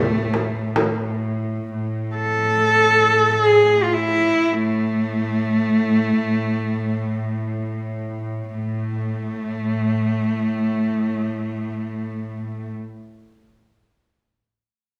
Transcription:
Already playing: A2 A3
0.34 frame drum
0.76 frame drum
1.71 A2
2.16 A4
3.31 A4
3.42 G#4
3.83 F4
3.93 E4
4.53 A3
8.54 A2 A3

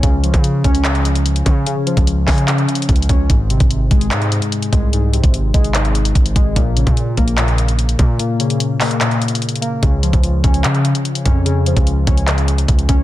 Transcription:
Already playing: C#3 F3 C#4
0.03 C#2 C#3, kick, closed hi-hat
0.24 F3, closed hi-hat
0.34 C#3, kick, closed hi-hat
0.44 closed hi-hat
0.64 C#2 C#4, kick, closed hi-hat
0.75 closed hi-hat
0.85 C#3, clap, closed hi-hat
0.95 closed hi-hat
1.05 closed hi-hat
1.15 closed hi-hat
1.26 closed hi-hat
1.36 closed hi-hat
1.45 C#3 C#4, kick, closed hi-hat
1.66 C#3, closed hi-hat
1.86 F3, closed hi-hat
1.97 C#2, kick, closed hi-hat
2.07 closed hi-hat
2.27 C#3 C#4, kick, clap, open hi-hat
2.38 closed hi-hat
2.48 C#3, clap, closed hi-hat
2.58 closed hi-hat
2.69 closed hi-hat
2.75 closed hi-hat
2.82 closed hi-hat
2.89 C#2, kick, closed hi-hat
2.96 closed hi-hat
3.02 closed hi-hat
3.09 C#2 C#4, kick, closed hi-hat
3.30 G#1 G#2, kick, closed hi-hat
3.50 C3, closed hi-hat
3.60 G#1, kick, closed hi-hat
3.71 closed hi-hat
3.91 G#1 G#3, kick, closed hi-hat
4.01 closed hi-hat
4.11 G#2, clap, closed hi-hat
4.22 closed hi-hat
4.32 closed hi-hat
4.42 closed hi-hat
4.52 closed hi-hat
4.62 closed hi-hat
4.72 C2 G#3, kick, closed hi-hat
4.93 G#2, closed hi-hat
5.13 C3, closed hi-hat
5.24 G#1, kick, closed hi-hat
5.34 closed hi-hat
5.54 G#1 G#3, kick, closed hi-hat
5.64 closed hi-hat
5.75 G#2, clap, closed hi-hat
5.85 closed hi-hat
5.95 closed hi-hat
6.05 closed hi-hat
6.15 G#1, kick, closed hi-hat
6.26 closed hi-hat
6.36 G#1 G#3, kick, closed hi-hat
6.56 A#1 A#2, kick, closed hi-hat
6.77 C#3, closed hi-hat
6.87 A#2, kick, closed hi-hat
6.97 closed hi-hat
7.17 A#1 A#3, kick, closed hi-hat
7.28 closed hi-hat
7.38 A#2, clap, closed hi-hat
7.48 closed hi-hat
7.58 closed hi-hat
7.68 closed hi-hat
7.79 closed hi-hat
7.89 closed hi-hat
7.99 A#2 A#3, kick, closed hi-hat
8.19 A#2, closed hi-hat
8.40 C#3, closed hi-hat
8.50 closed hi-hat
8.60 closed hi-hat
8.81 A#3, clap, open hi-hat
8.91 closed hi-hat
9.01 A#2, clap, closed hi-hat
9.11 closed hi-hat
9.22 closed hi-hat
9.28 closed hi-hat
9.35 closed hi-hat
9.42 closed hi-hat
9.49 closed hi-hat
9.55 closed hi-hat
9.61 A#3, closed hi-hat
9.83 C#2 C#3, kick, closed hi-hat
10.03 F3, closed hi-hat
10.13 C#2, kick, closed hi-hat
10.23 closed hi-hat
10.44 C#2 C#4, kick, closed hi-hat
10.54 closed hi-hat
10.64 C#3, clap, closed hi-hat
10.75 closed hi-hat
10.85 closed hi-hat
10.95 closed hi-hat
11.05 closed hi-hat
11.15 closed hi-hat
11.25 F2 C#4, kick, closed hi-hat
11.45 C#3, closed hi-hat
11.66 F3, closed hi-hat
11.77 C#2, kick, closed hi-hat
11.87 closed hi-hat
12.07 C#2 C#4, kick, closed hi-hat
12.17 closed hi-hat
12.28 C#3, clap, closed hi-hat
12.38 closed hi-hat
12.48 closed hi-hat
12.58 closed hi-hat
12.68 C#2, kick, closed hi-hat
12.79 closed hi-hat
12.89 C#2 C#4, kick, closed hi-hat

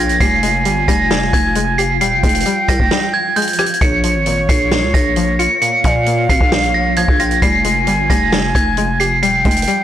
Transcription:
Already playing: A#1 A#2 F3 A#3 F4 C#5 G5 A#6
0.09 closed hi-hat
0.20 F1 F3 G3 G#5 C7, kick, closed hi-hat
0.43 G#3, closed hi-hat
0.65 G1 G3, closed hi-hat
0.88 F1 G3 A#6, kick, closed hi-hat
1.11 G3, snare
1.33 F1 G#6, kick, closed hi-hat
1.55 G#3, closed hi-hat
1.78 G4 C7, closed hi-hat
2.01 D#1 G3 G5 C7, closed hi-hat
2.12 F1
2.23 F1 G#3, kick, closed hi-hat, open hi-hat
2.29 closed hi-hat
2.35 closed hi-hat
2.40 closed hi-hat
2.46 G3, closed hi-hat
2.68 C2 G3 A#6, kick, cross-stick, closed hi-hat
2.80 F1, kick
2.91 G3, snare
3.14 G#6
3.36 G#3 G6, closed hi-hat
3.42 closed hi-hat
3.47 closed hi-hat
3.53 closed hi-hat
3.59 G4 G#6, cross-stick, closed hi-hat
3.66 closed hi-hat
3.74 closed hi-hat
3.81 A#1 A#2 A#3 F4 C#5 C#7, kick, closed hi-hat
4.04 F3, closed hi-hat
4.15 G#1
4.26 A#2, closed hi-hat
4.49 A#1 A#2 C7, kick, closed hi-hat
4.72 A#2, snare
4.83 C#2
4.94 A#1 A#6, kick, closed hi-hat
5.16 F3, closed hi-hat
5.39 F4 C#7, closed hi-hat
5.61 A#2 F5 C#7, closed hi-hat
5.84 A#2 F3, kick, closed hi-hat
6.06 A#2, closed hi-hat
6.29 G#1 A#2 C7, kick, closed hi-hat
6.41 A#1, kick
6.52 A#2, snare
6.63 closed hi-hat
6.74 A#6
6.96 F3 G#6, closed hi-hat
7.08 A#1, kick
7.20 F4 G5 A#6, closed hi-hat
7.31 closed hi-hat
7.42 F1 F3 G3 G#5 C7, kick, closed hi-hat
7.64 G#3, closed hi-hat
7.87 G1 G3, closed hi-hat
8.10 F1 G3 A#6, kick, closed hi-hat
8.32 G3, snare
8.55 F1 G#6, kick, closed hi-hat
8.77 G#3, closed hi-hat
9.00 G4 C7, closed hi-hat
9.22 D#1 G3 G5 C7, closed hi-hat
9.34 F1
9.45 F1 G#3, kick, closed hi-hat, open hi-hat
9.51 closed hi-hat
9.56 closed hi-hat
9.62 closed hi-hat
9.67 G3, closed hi-hat

